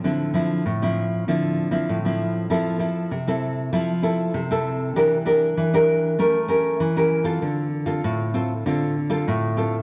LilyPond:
\new Staff \with { instrumentName = "Nylon-string guitar" } { \time 4/4 \key d \minor \tempo 4 = 98 << { <f c' e'>8 <f c' e'>8 r16 <f c' e'>8. <f c' e'>8. <f c' e'>8 <f c' e'>8. | \key f \major <c' e' a'>8 <c' e' a'>8 r16 <c' e' a'>8. <c' e' a'>16 r16 <c' e' a'>8. <c' e' a'>8. | <d' g' bes'>16 r16 <d' g' bes'>8. <d' g' bes'>8. <cis' g' bes'>16 r16 <cis' g' bes'>8. <cis' g' bes'>8 <c' f' a'>16~ | <c' f' a'>8 r16 <c' f' a'>8. <c' f' a'>16 r16 <c' f' a'>8 r16 <c' f' a'>8. <c' f' a'>16 r16 | } \\ { d4 a,4 d4 a,4 | f4 c4 f4 c4 | e4 e4 a4 e4 | d4 a,4 d4 a,4 | } >> }